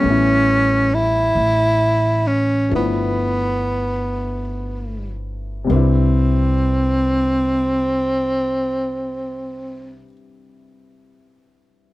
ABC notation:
X:1
M:4/4
L:1/8
Q:"Swing" 1/4=38
K:C
V:1 name="Tenor saxophone"
_D E2 ^C B,3 z | C8 |]
V:2 name="Grand piano"
[G,A,B,^CE]4 [F,A,B,DE]4 | [C,G,DEB]8 |]
V:3 name="Upright bass" clef=bass
A,,,2 A,,,2 G,,,4 | C,,8 |]